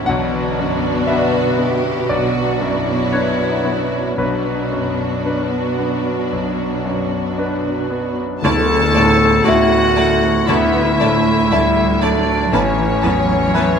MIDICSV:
0, 0, Header, 1, 10, 480
1, 0, Start_track
1, 0, Key_signature, 2, "minor"
1, 0, Tempo, 1020408
1, 33, Time_signature, 4, 2, 24, 8
1, 1473, Tempo, 1058201
1, 3873, Tempo, 1023891
1, 6391, End_track
2, 0, Start_track
2, 0, Title_t, "Violin section"
2, 0, Program_c, 0, 48
2, 34, Note_on_c, 0, 62, 53
2, 501, Note_off_c, 0, 62, 0
2, 504, Note_on_c, 0, 66, 53
2, 745, Note_off_c, 0, 66, 0
2, 751, Note_on_c, 0, 67, 52
2, 989, Note_off_c, 0, 67, 0
2, 989, Note_on_c, 0, 66, 52
2, 1230, Note_off_c, 0, 66, 0
2, 1236, Note_on_c, 0, 64, 52
2, 1954, Note_off_c, 0, 64, 0
2, 1957, Note_on_c, 0, 62, 43
2, 3623, Note_off_c, 0, 62, 0
2, 3884, Note_on_c, 0, 81, 61
2, 3885, Note_on_c, 0, 74, 57
2, 3921, Note_off_c, 0, 81, 0
2, 3922, Note_off_c, 0, 74, 0
2, 4120, Note_on_c, 0, 74, 50
2, 4122, Note_on_c, 0, 81, 51
2, 4157, Note_off_c, 0, 74, 0
2, 4160, Note_off_c, 0, 81, 0
2, 4354, Note_on_c, 0, 74, 56
2, 4355, Note_on_c, 0, 81, 55
2, 4391, Note_off_c, 0, 74, 0
2, 4392, Note_off_c, 0, 81, 0
2, 4597, Note_on_c, 0, 74, 46
2, 4597, Note_on_c, 0, 81, 53
2, 4634, Note_off_c, 0, 81, 0
2, 4635, Note_off_c, 0, 74, 0
2, 4836, Note_on_c, 0, 74, 54
2, 4838, Note_on_c, 0, 81, 58
2, 4873, Note_off_c, 0, 74, 0
2, 4876, Note_off_c, 0, 81, 0
2, 5082, Note_on_c, 0, 81, 50
2, 5083, Note_on_c, 0, 74, 55
2, 5120, Note_off_c, 0, 81, 0
2, 5121, Note_off_c, 0, 74, 0
2, 5322, Note_on_c, 0, 74, 51
2, 5324, Note_on_c, 0, 81, 55
2, 5360, Note_off_c, 0, 74, 0
2, 5362, Note_off_c, 0, 81, 0
2, 5556, Note_on_c, 0, 81, 53
2, 5558, Note_on_c, 0, 74, 56
2, 5593, Note_off_c, 0, 81, 0
2, 5596, Note_off_c, 0, 74, 0
2, 5799, Note_on_c, 0, 71, 58
2, 5799, Note_on_c, 0, 81, 53
2, 5836, Note_off_c, 0, 71, 0
2, 5837, Note_off_c, 0, 81, 0
2, 6031, Note_on_c, 0, 81, 50
2, 6035, Note_on_c, 0, 71, 52
2, 6069, Note_off_c, 0, 81, 0
2, 6073, Note_off_c, 0, 71, 0
2, 6278, Note_on_c, 0, 71, 55
2, 6280, Note_on_c, 0, 81, 55
2, 6315, Note_off_c, 0, 71, 0
2, 6317, Note_off_c, 0, 81, 0
2, 6391, End_track
3, 0, Start_track
3, 0, Title_t, "Violin section"
3, 0, Program_c, 1, 48
3, 32, Note_on_c, 1, 66, 51
3, 968, Note_off_c, 1, 66, 0
3, 987, Note_on_c, 1, 66, 57
3, 1933, Note_off_c, 1, 66, 0
3, 1955, Note_on_c, 1, 66, 43
3, 3766, Note_off_c, 1, 66, 0
3, 3869, Note_on_c, 1, 81, 81
3, 4336, Note_off_c, 1, 81, 0
3, 4356, Note_on_c, 1, 78, 78
3, 4839, Note_off_c, 1, 78, 0
3, 4845, Note_on_c, 1, 76, 67
3, 5554, Note_on_c, 1, 74, 65
3, 5560, Note_off_c, 1, 76, 0
3, 5787, Note_on_c, 1, 73, 75
3, 5793, Note_off_c, 1, 74, 0
3, 6391, Note_off_c, 1, 73, 0
3, 6391, End_track
4, 0, Start_track
4, 0, Title_t, "Clarinet"
4, 0, Program_c, 2, 71
4, 3876, Note_on_c, 2, 69, 99
4, 4353, Note_on_c, 2, 66, 96
4, 4360, Note_off_c, 2, 69, 0
4, 4831, Note_on_c, 2, 64, 83
4, 4838, Note_off_c, 2, 66, 0
4, 5557, Note_on_c, 2, 62, 79
4, 5564, Note_off_c, 2, 64, 0
4, 5798, Note_on_c, 2, 61, 100
4, 5805, Note_off_c, 2, 62, 0
4, 6391, Note_off_c, 2, 61, 0
4, 6391, End_track
5, 0, Start_track
5, 0, Title_t, "Viola section"
5, 0, Program_c, 3, 48
5, 29, Note_on_c, 3, 62, 61
5, 31, Note_on_c, 3, 59, 60
5, 967, Note_off_c, 3, 59, 0
5, 967, Note_off_c, 3, 62, 0
5, 988, Note_on_c, 3, 62, 49
5, 991, Note_on_c, 3, 59, 50
5, 1933, Note_off_c, 3, 62, 0
5, 1935, Note_off_c, 3, 59, 0
5, 1948, Note_on_c, 3, 59, 45
5, 1951, Note_on_c, 3, 62, 48
5, 3763, Note_off_c, 3, 59, 0
5, 3764, Note_off_c, 3, 62, 0
5, 3876, Note_on_c, 3, 57, 62
5, 3876, Note_on_c, 3, 64, 62
5, 3914, Note_off_c, 3, 57, 0
5, 3914, Note_off_c, 3, 64, 0
5, 4113, Note_on_c, 3, 57, 51
5, 4116, Note_on_c, 3, 64, 46
5, 4150, Note_off_c, 3, 57, 0
5, 4153, Note_off_c, 3, 64, 0
5, 4355, Note_on_c, 3, 64, 51
5, 4357, Note_on_c, 3, 57, 56
5, 4393, Note_off_c, 3, 64, 0
5, 4395, Note_off_c, 3, 57, 0
5, 4600, Note_on_c, 3, 57, 51
5, 4601, Note_on_c, 3, 64, 49
5, 4638, Note_off_c, 3, 57, 0
5, 4639, Note_off_c, 3, 64, 0
5, 4839, Note_on_c, 3, 64, 50
5, 4842, Note_on_c, 3, 57, 54
5, 4876, Note_off_c, 3, 64, 0
5, 4879, Note_off_c, 3, 57, 0
5, 5080, Note_on_c, 3, 57, 45
5, 5080, Note_on_c, 3, 64, 47
5, 5117, Note_off_c, 3, 57, 0
5, 5117, Note_off_c, 3, 64, 0
5, 5319, Note_on_c, 3, 57, 49
5, 5322, Note_on_c, 3, 64, 55
5, 5357, Note_off_c, 3, 57, 0
5, 5359, Note_off_c, 3, 64, 0
5, 5559, Note_on_c, 3, 64, 53
5, 5560, Note_on_c, 3, 57, 48
5, 5596, Note_off_c, 3, 64, 0
5, 5597, Note_off_c, 3, 57, 0
5, 5796, Note_on_c, 3, 59, 60
5, 5797, Note_on_c, 3, 64, 58
5, 5833, Note_off_c, 3, 59, 0
5, 5835, Note_off_c, 3, 64, 0
5, 6039, Note_on_c, 3, 59, 47
5, 6039, Note_on_c, 3, 64, 48
5, 6076, Note_off_c, 3, 59, 0
5, 6076, Note_off_c, 3, 64, 0
5, 6279, Note_on_c, 3, 59, 51
5, 6279, Note_on_c, 3, 64, 48
5, 6316, Note_off_c, 3, 59, 0
5, 6317, Note_off_c, 3, 64, 0
5, 6391, End_track
6, 0, Start_track
6, 0, Title_t, "Grand piano"
6, 0, Program_c, 4, 0
6, 0, Control_c, 4, 64, 127
6, 28, Note_on_c, 4, 78, 70
6, 42, Control_c, 4, 64, 0
6, 42, Note_on_c, 4, 35, 51
6, 111, Control_c, 4, 64, 127
6, 273, Note_on_c, 4, 42, 36
6, 489, Note_off_c, 4, 78, 0
6, 505, Note_on_c, 4, 76, 63
6, 512, Note_on_c, 4, 62, 36
6, 514, Note_on_c, 4, 71, 36
6, 654, Note_off_c, 4, 42, 0
6, 730, Note_off_c, 4, 62, 0
6, 731, Note_off_c, 4, 71, 0
6, 743, Note_on_c, 4, 59, 37
6, 966, Note_off_c, 4, 76, 0
6, 973, Note_off_c, 4, 35, 0
6, 984, Note_on_c, 4, 35, 42
6, 985, Note_on_c, 4, 74, 59
6, 1130, Note_off_c, 4, 59, 0
6, 1226, Note_on_c, 4, 42, 35
6, 1453, Note_off_c, 4, 74, 0
6, 1470, Note_on_c, 4, 73, 56
6, 1472, Note_on_c, 4, 62, 31
6, 1473, Note_on_c, 4, 71, 34
6, 1613, Note_off_c, 4, 42, 0
6, 1691, Note_off_c, 4, 62, 0
6, 1692, Note_off_c, 4, 71, 0
6, 1707, Note_on_c, 4, 59, 34
6, 1931, Note_off_c, 4, 73, 0
6, 1932, Note_off_c, 4, 35, 0
6, 1947, Note_on_c, 4, 35, 42
6, 1949, Note_off_c, 4, 59, 0
6, 1950, Note_on_c, 4, 71, 48
6, 1959, Control_c, 4, 64, 0
6, 2034, Control_c, 4, 64, 127
6, 2190, Note_on_c, 4, 42, 31
6, 2430, Note_off_c, 4, 71, 0
6, 2435, Note_on_c, 4, 62, 28
6, 2437, Note_on_c, 4, 71, 34
6, 2582, Note_off_c, 4, 42, 0
6, 2661, Note_off_c, 4, 62, 0
6, 2662, Note_off_c, 4, 71, 0
6, 2677, Note_on_c, 4, 59, 32
6, 2901, Note_off_c, 4, 35, 0
6, 2921, Note_on_c, 4, 35, 38
6, 3062, Note_off_c, 4, 59, 0
6, 3160, Note_on_c, 4, 42, 32
6, 3401, Note_on_c, 4, 62, 33
6, 3403, Note_on_c, 4, 71, 30
6, 3542, Note_off_c, 4, 42, 0
6, 3621, Note_off_c, 4, 62, 0
6, 3622, Note_off_c, 4, 71, 0
6, 3639, Note_on_c, 4, 59, 30
6, 3857, Note_off_c, 4, 35, 0
6, 3875, Note_off_c, 4, 59, 0
6, 3882, Note_on_c, 4, 38, 60
6, 3883, Control_c, 4, 64, 0
6, 3959, Control_c, 4, 64, 127
6, 4127, Note_on_c, 4, 45, 43
6, 4367, Note_on_c, 4, 64, 45
6, 4371, Note_on_c, 4, 76, 46
6, 4508, Note_off_c, 4, 45, 0
6, 4585, Note_off_c, 4, 64, 0
6, 4587, Note_off_c, 4, 76, 0
6, 4604, Note_on_c, 4, 57, 42
6, 4825, Note_off_c, 4, 38, 0
6, 4842, Note_on_c, 4, 38, 55
6, 4987, Note_off_c, 4, 57, 0
6, 5086, Note_on_c, 4, 45, 42
6, 5323, Note_on_c, 4, 64, 44
6, 5329, Note_on_c, 4, 76, 46
6, 5465, Note_off_c, 4, 45, 0
6, 5540, Note_off_c, 4, 64, 0
6, 5543, Note_off_c, 4, 76, 0
6, 5563, Note_on_c, 4, 57, 47
6, 5777, Note_off_c, 4, 38, 0
6, 5797, Note_on_c, 4, 33, 54
6, 5798, Note_off_c, 4, 57, 0
6, 5802, Control_c, 4, 64, 0
6, 5881, Control_c, 4, 64, 127
6, 6036, Note_on_c, 4, 40, 43
6, 6272, Note_on_c, 4, 64, 41
6, 6276, Note_on_c, 4, 71, 43
6, 6391, Note_off_c, 4, 33, 0
6, 6391, Note_off_c, 4, 40, 0
6, 6391, Note_off_c, 4, 64, 0
6, 6391, Note_off_c, 4, 71, 0
6, 6391, End_track
7, 0, Start_track
7, 0, Title_t, "Harp"
7, 0, Program_c, 5, 46
7, 0, Note_on_c, 5, 45, 45
7, 0, Note_on_c, 5, 52, 38
7, 0, Note_on_c, 5, 61, 46
7, 0, Note_on_c, 5, 64, 41
7, 0, Note_on_c, 5, 71, 46
7, 32, Note_on_c, 5, 47, 54
7, 50, Note_off_c, 5, 45, 0
7, 52, Note_off_c, 5, 52, 0
7, 53, Note_off_c, 5, 61, 0
7, 53, Note_off_c, 5, 64, 0
7, 152, Note_on_c, 5, 50, 38
7, 269, Note_on_c, 5, 59, 37
7, 387, Note_on_c, 5, 62, 39
7, 501, Note_off_c, 5, 71, 0
7, 506, Note_on_c, 5, 71, 43
7, 618, Note_off_c, 5, 62, 0
7, 624, Note_on_c, 5, 62, 38
7, 858, Note_off_c, 5, 59, 0
7, 864, Note_on_c, 5, 59, 36
7, 979, Note_off_c, 5, 47, 0
7, 984, Note_on_c, 5, 47, 42
7, 1103, Note_on_c, 5, 54, 33
7, 1223, Note_off_c, 5, 59, 0
7, 1228, Note_on_c, 5, 59, 38
7, 1338, Note_off_c, 5, 62, 0
7, 1343, Note_on_c, 5, 62, 38
7, 1462, Note_off_c, 5, 71, 0
7, 1468, Note_on_c, 5, 71, 36
7, 1577, Note_off_c, 5, 62, 0
7, 1583, Note_on_c, 5, 62, 33
7, 1696, Note_off_c, 5, 54, 0
7, 1701, Note_on_c, 5, 54, 32
7, 1813, Note_off_c, 5, 59, 0
7, 1819, Note_on_c, 5, 59, 37
7, 1936, Note_off_c, 5, 47, 0
7, 1941, Note_on_c, 5, 47, 47
7, 1968, Note_off_c, 5, 50, 0
7, 2059, Note_off_c, 5, 54, 0
7, 2064, Note_on_c, 5, 54, 34
7, 2182, Note_off_c, 5, 59, 0
7, 2188, Note_on_c, 5, 59, 32
7, 2305, Note_off_c, 5, 62, 0
7, 2310, Note_on_c, 5, 62, 33
7, 2426, Note_off_c, 5, 71, 0
7, 2431, Note_on_c, 5, 71, 37
7, 2543, Note_off_c, 5, 62, 0
7, 2549, Note_on_c, 5, 62, 32
7, 2670, Note_off_c, 5, 54, 0
7, 2676, Note_on_c, 5, 54, 33
7, 2790, Note_off_c, 5, 59, 0
7, 2796, Note_on_c, 5, 59, 35
7, 2909, Note_off_c, 5, 47, 0
7, 2914, Note_on_c, 5, 47, 38
7, 3031, Note_off_c, 5, 54, 0
7, 3036, Note_on_c, 5, 54, 33
7, 3151, Note_off_c, 5, 59, 0
7, 3157, Note_on_c, 5, 59, 33
7, 3270, Note_off_c, 5, 62, 0
7, 3275, Note_on_c, 5, 62, 34
7, 3388, Note_off_c, 5, 71, 0
7, 3393, Note_on_c, 5, 71, 35
7, 3508, Note_off_c, 5, 62, 0
7, 3513, Note_on_c, 5, 62, 31
7, 3624, Note_off_c, 5, 54, 0
7, 3630, Note_on_c, 5, 54, 32
7, 3743, Note_off_c, 5, 59, 0
7, 3748, Note_on_c, 5, 59, 34
7, 3868, Note_on_c, 5, 50, 65
7, 3889, Note_off_c, 5, 59, 0
7, 3890, Note_off_c, 5, 47, 0
7, 3890, Note_off_c, 5, 54, 0
7, 3891, Note_off_c, 5, 71, 0
7, 3982, Note_off_c, 5, 62, 0
7, 3987, Note_on_c, 5, 62, 44
7, 4109, Note_on_c, 5, 57, 49
7, 4227, Note_on_c, 5, 64, 49
7, 4348, Note_on_c, 5, 76, 54
7, 4469, Note_off_c, 5, 64, 0
7, 4590, Note_off_c, 5, 62, 0
7, 4595, Note_on_c, 5, 62, 42
7, 4710, Note_off_c, 5, 57, 0
7, 4715, Note_on_c, 5, 57, 44
7, 4830, Note_off_c, 5, 50, 0
7, 4836, Note_on_c, 5, 50, 51
7, 4952, Note_off_c, 5, 62, 0
7, 5071, Note_off_c, 5, 57, 0
7, 5076, Note_on_c, 5, 57, 45
7, 5194, Note_on_c, 5, 64, 43
7, 5314, Note_off_c, 5, 76, 0
7, 5320, Note_on_c, 5, 76, 55
7, 5429, Note_off_c, 5, 64, 0
7, 5435, Note_on_c, 5, 64, 45
7, 5556, Note_on_c, 5, 62, 44
7, 5669, Note_off_c, 5, 57, 0
7, 5674, Note_on_c, 5, 57, 53
7, 5793, Note_on_c, 5, 45, 63
7, 5812, Note_off_c, 5, 50, 0
7, 5813, Note_off_c, 5, 62, 0
7, 5910, Note_on_c, 5, 52, 44
7, 6029, Note_on_c, 5, 59, 45
7, 6147, Note_off_c, 5, 64, 0
7, 6153, Note_on_c, 5, 64, 44
7, 6273, Note_on_c, 5, 71, 54
7, 6389, Note_off_c, 5, 64, 0
7, 6391, Note_off_c, 5, 45, 0
7, 6391, Note_off_c, 5, 52, 0
7, 6391, Note_off_c, 5, 57, 0
7, 6391, Note_off_c, 5, 59, 0
7, 6391, Note_off_c, 5, 71, 0
7, 6391, Note_off_c, 5, 76, 0
7, 6391, End_track
8, 0, Start_track
8, 0, Title_t, "Cello section"
8, 0, Program_c, 6, 48
8, 33, Note_on_c, 6, 47, 59
8, 1933, Note_off_c, 6, 47, 0
8, 1954, Note_on_c, 6, 47, 47
8, 3766, Note_off_c, 6, 47, 0
8, 4842, Note_on_c, 6, 59, 69
8, 5065, Note_off_c, 6, 59, 0
8, 5083, Note_on_c, 6, 57, 55
8, 5321, Note_off_c, 6, 57, 0
8, 5326, Note_on_c, 6, 55, 64
8, 5561, Note_off_c, 6, 55, 0
8, 5566, Note_on_c, 6, 54, 60
8, 5795, Note_off_c, 6, 54, 0
8, 5801, Note_on_c, 6, 52, 62
8, 6036, Note_off_c, 6, 52, 0
8, 6039, Note_on_c, 6, 54, 63
8, 6391, Note_off_c, 6, 54, 0
8, 6391, End_track
9, 0, Start_track
9, 0, Title_t, "Double bass section"
9, 0, Program_c, 7, 48
9, 29, Note_on_c, 7, 35, 51
9, 489, Note_off_c, 7, 35, 0
9, 1948, Note_on_c, 7, 35, 42
9, 2420, Note_off_c, 7, 35, 0
9, 3872, Note_on_c, 7, 38, 66
9, 4299, Note_off_c, 7, 38, 0
9, 4354, Note_on_c, 7, 38, 58
9, 4781, Note_off_c, 7, 38, 0
9, 4841, Note_on_c, 7, 38, 66
9, 5264, Note_off_c, 7, 38, 0
9, 5315, Note_on_c, 7, 38, 63
9, 5737, Note_off_c, 7, 38, 0
9, 5793, Note_on_c, 7, 33, 68
9, 6216, Note_off_c, 7, 33, 0
9, 6277, Note_on_c, 7, 33, 56
9, 6391, Note_off_c, 7, 33, 0
9, 6391, End_track
10, 0, Start_track
10, 0, Title_t, "Tam-tam"
10, 3874, Note_on_c, 9, 52, 62
10, 3921, Note_off_c, 9, 52, 0
10, 6391, End_track
0, 0, End_of_file